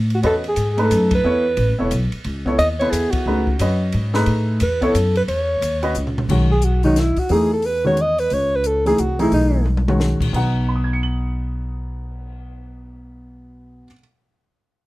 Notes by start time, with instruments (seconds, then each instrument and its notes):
Already playing: upright bass A2
0.10 ride
0.15 alto saxophone F#4
0.23 upright bass E2, grand piano C#4 F#4 B4 D#5, alto saxophone A4, ride
0.44 ride
0.48 alto saxophone G#4
0.56 upright bass G#2, hi-hat pedal, ride
0.71 alto saxophone G#4
0.77 grand piano A3 D#4 A4 B4, ride
0.81 alto saxophone A4
0.91 upright bass F#2, hi-hat pedal, ride
1.11 alto saxophone B4, kick, ride
1.24 upright bass E2, grand piano B3 E4 A4 C#5
1.57 upright bass A1, ride
1.69 upright bass F#1
1.79 upright bass E1, grand piano B3 E4 A4 C#5
1.91 upright bass B1, hi-hat pedal, ride
2.12 muted upright bass stroke, ride
2.24 upright bass C#2, ride
2.46 grand piano B3 E4 A4 C#5, kick
2.58 upright bass D#2, alto saxophone D#5, hi-hat pedal, ride
2.79 grand piano B3 E4 A4 B4, alto saxophone C#5, ride
2.91 upright bass E2, alto saxophone G#4, hi-hat pedal, ride
3.11 alto saxophone F#4, muted upright bass stroke, kick, ride
3.26 upright bass C#2, grand piano A3 D#4 G#4 B4
3.47 kick
3.59 upright bass F#2, grand piano C#4 F#4 B4 D#5, hi-hat pedal, ride
3.92 upright bass G#2, ride
4.14 grand piano A3 D#4 G#4 B4, snare
4.26 upright bass A2, ride
4.60 upright bass E2, alto saxophone B4, hi-hat pedal, ride
4.81 grand piano B3 E4 A4 C#5, alto saxophone A4, kick, ride
4.95 upright bass F#2, hi-hat pedal, ride
5.15 alto saxophone B4, ride
5.28 upright bass E2, alto saxophone C#5, ride
5.61 upright bass D#2, hi-hat pedal, ride
5.82 grand piano C#4 F#4 B4 D#5, ride
5.95 upright bass C#2, hi-hat pedal
6.07 floor tom
6.18 floor tom
6.29 upright bass B1, grand piano D#3 G#3 C#4 F#4, kick, crash
6.51 alto saxophone G#4
6.62 alto saxophone F#4, closed hi-hat
6.83 grand piano D#3 G#3 C#4 F#4, alto saxophone D#4, open hi-hat
6.96 alto saxophone E4, snare, closed hi-hat
7.17 alto saxophone F#4, muted upright bass stroke, kick, open hi-hat
7.29 upright bass E2, grand piano E3 A3 D#4 G#4, alto saxophone G#4, open hi-hat
7.53 alto saxophone A4
7.62 alto saxophone B4, open hi-hat
7.84 grand piano D#3 G#3 C#4 F#4, alto saxophone C#5
7.97 closed hi-hat
8.01 alto saxophone D#5
8.18 alto saxophone B4, open hi-hat
8.30 upright bass C#2, alto saxophone C#5, open hi-hat
8.56 alto saxophone B4
8.64 alto saxophone A4, closed hi-hat
8.86 grand piano E3 A3 D#4 G#4, alto saxophone G#4, open hi-hat
8.98 upright bass C2, alto saxophone F#4, closed hi-hat
9.19 grand piano E3 A3 D#4 G#4, alto saxophone E4, open hi-hat
9.32 upright bass B1, alto saxophone D#4, open hi-hat
9.66 mid tom
9.77 mid tom
9.88 grand piano D#3 G#3 C#4 F#4, mid tom
10.00 snare
10.20 upright bass A#1, kick, crash
10.33 upright bass B1, grand piano B2 B3 D#4 F#4 F#5, kick, crash
10.55 cymbal swell
10.69 grand piano B5
10.76 grand piano D#6
10.84 grand piano G#6
10.93 grand piano C#7
11.03 grand piano F#7